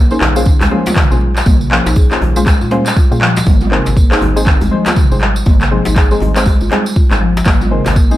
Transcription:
Already playing: A#1
0.11 A#3 C#4 D#4 F4 G#4 C5, tambourine
0.21 A#1, clap, djembe tone, high conga, low conga
0.36 A#3 C#4 F4 G#4 C5, tambourine
0.45 kick, tambourine, low conga
0.61 A#1 G#3, clap, tambourine, high conga, djembe bass
0.71 F3 A#3 C#4 F4 G#4 C5
0.86 F4, mid tom, tambourine, djembe slap
0.96 kick, clap, tambourine, low conga
1.11 A#1 A#3 C#4 F4 G#4 C5, tambourine, high conga
1.21 high conga
1.36 clap, tambourine
1.46 A#1 A#3, kick, mid tom, tambourine, djembe tone, high conga
1.61 tambourine
1.71 F3 A#3 C#4 F4 G#4 C5, clap
1.86 A#1 D#4, tambourine, djembe slap, djembe tone
1.96 G#4, kick, tambourine
2.11 A#3 C#4 F4 G#4 C5, clap, tambourine
2.21 A#1, high conga, djembe tone, low conga
2.36 G#3 A#3 C#4 F4 G#4 C5, tambourine
2.46 kick, clap, tambourine, djembe bass
2.61 A#2 F4, tambourine
2.71 A#3 C#4 F4 G#4 C5, djembe slap, high conga
2.86 clap, tambourine
2.96 F4, kick, tambourine
3.11 A#2 A#3 C#4 F4 G#4 C5, tambourine, high conga
3.21 F3, clap
3.36 tambourine, djembe slap, high conga
3.46 G#1 A#3, kick, mid tom, tambourine, high conga, djembe tone
3.60 F4, mid tom, tambourine
3.71 G#3 C4 D#4 G#4 A#4 C5, clap
3.86 G#1, tambourine, djembe slap, djembe tone, low conga
3.97 A#3, kick, tambourine
4.11 G#3 C4 D#4 G#4 C5, clap, tambourine
4.21 G#1, djembe tone, high conga, low conga
4.36 G#3 C4 D#4 G#4 C5, tambourine
4.46 kick, clap, tambourine, low conga
4.61 G#1 G#3, tambourine, high conga, djembe bass
4.71 F3 G#3 C4 D#4 G#4 C5
4.86 F4, clap, mid tom, tambourine, djembe slap
4.96 kick, tambourine, low conga
5.11 G#1 G#3 C4 D#4 G#4 C5, tambourine, high conga
5.21 clap, high conga
5.36 tambourine
5.46 G#1 A#3, kick, mid tom, tambourine, high conga, djembe tone
5.61 clap, tambourine
5.71 F3 G#3 C4 D#4 G#4 C5
5.85 G#1 D#4, tambourine, djembe slap, djembe tone
5.96 G#4, kick, clap, tambourine
6.11 G#3 C4 D#4 G#4 C5, tambourine
6.20 G#1, djembe tone, high conga, low conga
6.36 G#3 C4 D#4 G#4 C5, clap, tambourine
6.46 kick, tambourine, djembe bass
6.61 G#1 F4, tambourine
6.71 G#3 C4 D#4 G#4 C5, clap, djembe slap, high conga
6.86 tambourine
6.96 F4, kick, tambourine
7.11 G#1 G#3 C4 D#4 G#4 C5, clap, tambourine, high conga
7.21 F3
7.37 tambourine, djembe slap
7.45 G#1 A#3, kick, clap, mid tom, tambourine, djembe tone, high conga
7.61 F4, mid tom, tambourine
7.71 G#3 C4 D#4 G#4 A#4 C5
7.86 G#1, clap, tambourine, djembe slap, djembe tone, low conga
7.96 A#3, kick, tambourine
8.11 G#3 C4 D#4 G#4 C5, tambourine

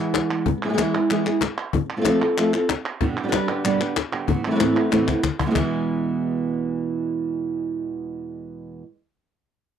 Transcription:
Already playing: E3 G#3 B3 G#4
0.00 E3 G#3 B3 E4
0.14 cajon slap, clap
0.30 G#3 B3
0.46 muted nylon-string guitar stroke, cajon bass
0.64 G#3 B3 E4 G#4
0.69 G#3 B3 E4 G#4
0.73 G#3 B3 E4 G#4
0.78 E3 G#3 B3 E4 G#4, cajon slap, clap
0.95 B3 E4 G#4
1.10 E3 G#3 B3 E4 G#4, cajon slap, clap
1.26 B3 E4 G#4, clap
1.41 muted nylon-string guitar stroke, cajon slap, clap
1.73 muted nylon-string guitar stroke, cajon bass
1.97 A3 C4 F4 A4
2.01 A3 C4 F4 A4, cajon slap
2.06 F3 A3 C4 F4 A4, clap
2.21 C4 F4 A4
2.37 F3 A3 C4 F4 A4, clap
2.53 C4 F4 A4, clap
2.69 muted nylon-string guitar stroke, cajon slap, clap
3.01 G2 B2 D3 G3 B3 G4, muted nylon-string guitar stroke, cajon bass, cajon slap
3.17 D3 G3 B3 G4
3.23 G3 D4 G4 B4
3.28 G3 D4 G4 B4
3.33 G3 D4 G4 B4, muted nylon-string guitar stroke, cajon slap, clap
3.48 D3 G3 B3 D4 G4 B4, clap
3.64 G2 B2 D3 G3 B3 D4 G4 B4, cajon slap, clap
3.80 D3 G3 B3 D4 G4 B4, clap
3.96 muted nylon-string guitar stroke, cajon slap, clap
4.12 D3 G3 B3 G4
4.27 A2 C3 E3 B3 C4 E4, muted nylon-string guitar stroke, cajon bass
4.43 E3 A3 B3 C4 E4, cajon slap
4.48 E3 A3 C4 B4
4.52 E3 A3 E4 B4
4.56 A2 E3 C4 E4 B4, muted nylon-string guitar stroke
4.60 A3 C4 E4 B4, cajon slap, clap
4.75 E3 A3 B3 C4 E4 B4
4.91 A2 C3 E3 A3 B3 C4 E4 B4, cajon slap, clap
5.07 E3 A3 B3 C4 E4 B4, cajon bass, clap
5.23 muted nylon-string guitar stroke, cajon bass, clap
5.39 B2 E3 G#3 B3 C4 E4, cajon bass
5.43 B2 E3 G#3 B3 E4 G#4
5.47 B2 E3 G#3 B3 E4
5.51 E3 G#3 B3 E4 G#4
5.55 E2 B2 E3 G#3 B3 E4 G#4, cajon bass, clap

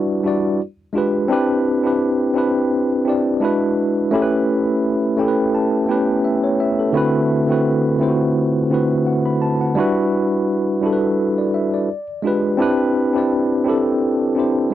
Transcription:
Already playing: G3 D4 E4 F#4 B4 D5
0.23 G3 D4 E4 F#4
0.28 D5
0.93 G#3 D4 F4 G4
0.98 B4
1.28 C4 D4 E4 G4
1.33 B4
1.83 C4 D4 E4 G4
1.87 B4
2.34 C4 D4 E4 G4
2.38 B4
3.05 C4 D4 E4 G4
3.09 D5
3.40 G#3 D4 E4 F#4
3.45 B4
4.11 A3 C#4 E4 G4
4.15 A4
4.22 B4
5.17 A3 C#4 E4 G4 G5
5.21 A4
5.28 B4
5.55 A5
5.87 A3 B3 E4 G4 G5
5.91 C#4 B4
6.25 E5
6.44 C#5
6.60 E5
6.79 A4
6.93 D3 A3 C4 E4 F#4
6.97 B4
7.47 D3 A3 C4 E4 F#4
7.52 B4
7.98 D3 A3 C4 E4 F4
8.03 C5
8.09 F#4
8.70 D3 A3 C4 E4 F#4
8.74 B4
9.07 F#5
9.26 B5
9.42 A5
9.61 F#5
9.75 G3 D4 E4 F#4
9.80 B4
10.81 G3 D4 E4 F#4
10.86 A4
10.93 B4
11.38 D5
11.54 E5
11.74 D5
12.22 G#3 D4 F4 G4
12.27 B4
12.57 C4 D4 E4 G4
12.62 B4
13.13 C4 D4 E4 G4
13.18 D5
13.64 C4 D4 E4 G4
13.69 A4
14.35 C4 D4 E4 G4
14.40 C5
14.70 G#3

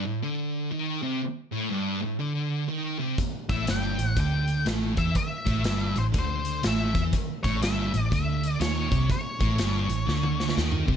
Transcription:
0.04 A2
0.23 D3
0.71 D#3
1.03 C3
1.52 A2
1.70 G2
2.01 A2
2.20 D3
2.68 D#3
2.99 C3
3.18 kick, closed hi-hat
3.49 A1 A2 E5, kick, closed hi-hat
3.66 G1 G2, snare, closed hi-hat
3.71 G5
3.98 A1 A2, closed hi-hat
4.08 F#5
4.17 D2 D3 G5, kick, closed hi-hat
4.48 closed hi-hat
4.66 A1 A2, snare, closed hi-hat
4.96 E2 E3 E5, kick, closed hi-hat
5.15 E5, kick, closed hi-hat
5.45 A1 A2, kick, closed hi-hat
5.64 G1 G2, snare, closed hi-hat
5.96 A1 A2 C5, closed hi-hat
6.14 D2 D3, kick, closed hi-hat
6.19 C5
6.45 closed hi-hat
6.63 A1 A2 E5, snare, closed hi-hat
6.95 E2 E3, kick, closed hi-hat
7.13 kick, closed hi-hat
7.43 A1 A2 C#5, kick, closed hi-hat
7.61 G1 G2 E5, snare, closed hi-hat
7.93 A1 A2, closed hi-hat
8.11 D2 D3 E5, kick, closed hi-hat
8.43 closed hi-hat
8.60 D#2 D#3 C#5, snare, closed hi-hat
8.90 C2 C3, kick, closed hi-hat
9.10 C#5, kick, closed hi-hat
9.39 A1 A2, kick, closed hi-hat
9.57 G1 G2, snare, closed hi-hat
9.88 A1 A2, closed hi-hat
10.06 D2 D3, snare
10.23 high tom
10.40 snare
10.49 snare
10.55 D#2 D#3, snare
10.72 mid tom
10.87 C2 C3, kick

